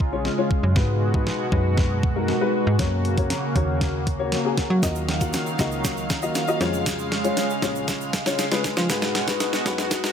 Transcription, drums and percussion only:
0.00 kick medium
0.25 snare medium
0.51 kick medium
0.76 kick loud
0.76 snare medium
1.14 kick medium
1.27 snare medium
1.52 kick medium
1.77 kick medium
1.77 snare medium
2.03 kick medium
2.28 snare medium
2.79 kick loud
2.79 snare medium
2.79 closed hi-hat medium
3.05 closed hi-hat medium
3.18 kick medium
3.18 closed hi-hat medium
3.30 snare medium
3.30 closed hi-hat loud
3.56 kick medium
3.56 closed hi-hat medium
3.81 kick loud
3.81 snare medium
3.81 closed hi-hat medium
4.07 kick medium
4.07 closed hi-hat medium
4.32 snare medium
4.32 closed hi-hat medium
4.57 kick medium
4.57 snare medium
4.57 closed hi-hat medium
4.83 kick loud
4.83 snare medium
4.83 closed hi-hat medium
4.83 shaker medium
4.95 shaker soft
5.09 snare medium
5.09 closed hi-hat medium
5.21 kick medium
5.21 closed hi-hat medium
5.21 shaker medium
5.33 snare medium
5.33 closed hi-hat loud
5.33 shaker medium
5.46 shaker soft
5.59 kick medium
5.59 snare medium
5.59 closed hi-hat medium
5.59 shaker medium
5.72 shaker soft
5.84 kick loud
5.84 snare medium
5.84 closed hi-hat medium
5.84 shaker medium
5.97 shaker soft
6.10 kick loud
6.10 snare medium
6.10 closed hi-hat medium
6.10 shaker soft
6.22 shaker medium
6.35 snare medium
6.35 closed hi-hat medium
6.35 shaker medium
6.48 shaker soft
6.61 snare medium
6.61 closed hi-hat medium
6.61 shaker medium
6.74 shaker medium
6.86 kick loud
6.86 snare medium
6.86 closed hi-hat medium
6.86 shaker medium
6.99 shaker soft
7.12 snare loud
7.12 closed hi-hat medium
7.24 closed hi-hat medium
7.24 shaker medium
7.37 snare loud
7.37 closed hi-hat loud
7.37 shaker medium
7.50 shaker soft
7.62 kick medium
7.62 snare medium
7.62 closed hi-hat medium
7.62 shaker medium
7.75 shaker soft
7.88 kick loud
7.88 snare medium
7.88 closed hi-hat medium
7.88 shaker medium
8.01 shaker soft
8.13 kick medium
8.13 snare loud
8.13 closed hi-hat medium
8.13 shaker soft
8.26 snare loud
8.26 shaker medium
8.39 snare loud
8.39 closed hi-hat medium
8.39 shaker medium
8.51 snare loud
8.51 shaker medium
8.64 kick medium
8.64 snare loud
8.64 closed hi-hat medium
8.64 shaker medium
8.77 snare loud
8.77 shaker medium
8.90 kick loud
8.90 snare loud
8.90 closed hi-hat loud
8.90 shaker medium
9.02 snare loud
9.02 shaker soft
9.15 snare loud
9.15 closed hi-hat medium
9.28 kick medium
9.28 snare loud
9.28 closed hi-hat medium
9.28 shaker medium
9.40 snare loud
9.40 closed hi-hat loud
9.40 shaker medium
9.53 snare loud
9.53 shaker soft
9.66 kick medium
9.66 snare loud
9.66 closed hi-hat medium
9.66 shaker medium
9.78 snare loud
9.78 shaker soft
9.91 kick loud
9.91 snare loud
9.91 closed hi-hat medium
9.91 shaker medium
10.04 snare loud
10.04 shaker soft

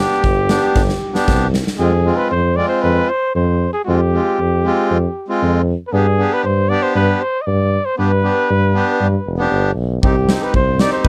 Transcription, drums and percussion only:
0.11 snare soft
0.24 kick medium
0.24 snare soft
0.49 snare medium
0.75 kick medium
0.75 snare soft
0.89 snare soft
1.15 snare soft
1.28 kick medium
1.28 snare medium
1.54 snare medium
1.67 snare medium
10.03 kick medium
10.29 snare medium
10.54 kick medium
10.79 snare medium
11.05 kick medium

